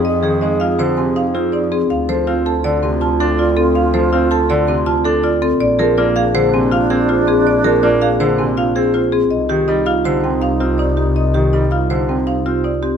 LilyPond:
<<
  \new Staff \with { instrumentName = "Marimba" } { \time 5/4 \key bes \mixolydian \tempo 4 = 162 ees''8 aes'8 ees''8 f''8 aes'8 aes''8 f''8 aes'8 d''8 aes'8 | f''8 a'8 f''8 a''8 a'8 c'''8 a''8 a'8 d''8 a'8 | f''8 a'8 f''8 a''8 a'8 c'''8 a''8 a'8 d''8 a'8 | d''8 aes'8 d''8 f''8 aes'8 aes''8 f''8 aes'8 c''8 aes'8 |
d''8 aes'8 d''8 f''8 aes'8 aes''8 f''8 aes'8 c''8 aes'8 | ees''8 g'8 ees''8 f''8 g'8 g''8 f''8 g'8 d''8 g'8 | ees''8 g'8 ees''8 f''8 g'8 g''8 f''8 g'8 d''8 g'8 | }
  \new Staff \with { instrumentName = "Marimba" } { \time 5/4 \key bes \mixolydian r8 aes'8 ees'8 f'8 c''8 c'8 ees'8 f'8 ees'8 c'8 | r8 c''8 f'8 a'8 d''8 c'8 f'8 a'8 f'8 c'8 | r8 c''8 f'8 a'8 d''8 c'8 f'8 a'8 f'8 c'8 | r8 bes'8 f'8 aes'8 c''8 c'8 f'8 aes'8 f'8 c'8 |
r8 bes'8 f'8 aes'8 c''8 c'8 f'8 aes'8 f'8 c'8 | r8 g'8 ees'8 f'8 c''8 c'8 ees'8 f'8 ees'8 c'8 | r8 g'8 ees'8 f'8 c''8 c'8 ees'8 f'8 ees'8 c'8 | }
  \new Staff \with { instrumentName = "Alto flute" } { \time 5/4 \key bes \mixolydian aes'1~ aes'8 r8 | f'1~ f'4~ | f'1~ f'8 r8 | d'1~ d'4~ |
d'1~ d'8 r8 | ees'1~ ees'4~ | ees'1~ ees'8 r8 | }
  \new Staff \with { instrumentName = "Grand piano" } { \clef bass \time 5/4 \key bes \mixolydian r8 ees8 aes8 r8 d8 c8 r8 c'8 r4 | r8 f8 c'8 r8 d8 c8 r8 d'8 r4 | r8 f8 c'8 r8 d8 c8 r8 d'8 r4 | r8 f8 bes8 r8 d8 c8 r8 c'8 r4 |
r8 f8 bes8 r8 d8 c8 r8 c'8 r4 | r8 ees8 g8 r8 d8 c8 r8 c'8 r4 | r8 ees8 g8 r8 d8 c8 r8 c'8 r4 | }
  \new Staff \with { instrumentName = "Double bass section" } { \clef bass \time 5/4 \key bes \mixolydian f,1~ f,4 | d,1~ d,4~ | d,1~ d,4 | bes,,1~ bes,,4~ |
bes,,1~ bes,,4 | c,1~ c,4~ | c,1~ c,4 | }
>>